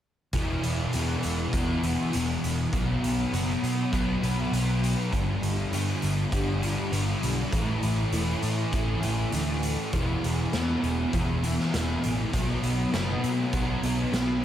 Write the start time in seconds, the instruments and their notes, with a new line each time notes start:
0.33 fingered electric bass E1, distorted electric guitar E2 B2 E3, kick, closed hi-hat
0.63 fingered electric bass E1, closed hi-hat
0.93 fingered electric bass E2, distorted electric guitar E2 B2 E3, closed hi-hat
1.23 fingered electric bass E1, closed hi-hat
1.53 fingered electric bass E1, distorted electric guitar E2 B2 E3, kick, closed hi-hat
1.83 distorted electric guitar B2 E3, closed hi-hat
2.13 fingered electric bass E1, distorted electric guitar E2 B2 E3, closed hi-hat
2.44 fingered electric bass E1, closed hi-hat
2.73 fingered electric bass B1, distorted electric guitar B2 F#3 B3, kick, closed hi-hat
3.03 fingered electric bass B1, closed hi-hat
3.32 fingered electric bass F#1, distorted electric guitar B2 F#3 B3, closed hi-hat
3.63 fingered electric bass B2, closed hi-hat
3.92 fingered electric bass B1, distorted electric guitar B2 F#3 B3, kick, closed hi-hat
4.22 fingered electric bass B1, distorted electric guitar F#3 B3, closed hi-hat
4.51 fingered electric bass B1, distorted electric guitar B2 F#3 B3, closed hi-hat
4.84 closed hi-hat
5.11 fingered electric bass G1, distorted electric guitar G2 D3 G3, kick, closed hi-hat
5.42 fingered electric bass G1, closed hi-hat
5.71 fingered electric bass G2, distorted electric guitar G2 D3 G3, closed hi-hat
6.02 fingered electric bass G1, closed hi-hat
6.32 fingered electric bass G1, distorted electric guitar G2 D3 G3, kick, closed hi-hat
6.61 distorted electric guitar D3 G3, closed hi-hat
6.91 fingered electric bass G1, distorted electric guitar G2 D3 G3, closed hi-hat
7.22 fingered electric bass B1, closed hi-hat
7.51 fingered electric bass A1, distorted electric guitar A2 E3 A3, kick, closed hi-hat
7.83 fingered electric bass A1, closed hi-hat
8.12 fingered electric bass E1, distorted electric guitar A2 E3 A3, closed hi-hat
8.43 fingered electric bass A2, closed hi-hat
8.72 fingered electric bass A1, distorted electric guitar A2 E3 A3, kick, closed hi-hat
9.01 fingered electric bass A1, distorted electric guitar E3 A3, closed hi-hat
9.31 fingered electric bass D2, distorted electric guitar A2 E3 A3, closed hi-hat
9.63 closed hi-hat
9.92 fingered electric bass E1, distorted electric guitar E2 B2 E3, kick, closed hi-hat
10.23 fingered electric bass E1, closed hi-hat
10.53 fingered electric bass E2, distorted electric guitar E2 B2 E3, snare, closed hi-hat
10.83 fingered electric bass E1, closed hi-hat
11.13 fingered electric bass E1, distorted electric guitar E2 B2 E3, kick, closed hi-hat
11.43 distorted electric guitar B2 E3, closed hi-hat
11.59 snare
11.73 fingered electric bass E1, distorted electric guitar E2 B2 E3, snare, closed hi-hat
12.04 fingered electric bass A1, closed hi-hat
12.32 fingered electric bass B1, distorted electric guitar B2 F#3 B3, kick, closed hi-hat
12.62 fingered electric bass B1, closed hi-hat
12.92 fingered electric bass F#1, distorted electric guitar B2 F#3 B3, snare, closed hi-hat
13.23 fingered electric bass B2, closed hi-hat
13.53 fingered electric bass B1, distorted electric guitar B2 F#3 B3, kick, closed hi-hat
13.82 fingered electric bass B1, distorted electric guitar F#3 B3, closed hi-hat
14.12 fingered electric bass B1, distorted electric guitar B2 F#3 B3, snare, closed hi-hat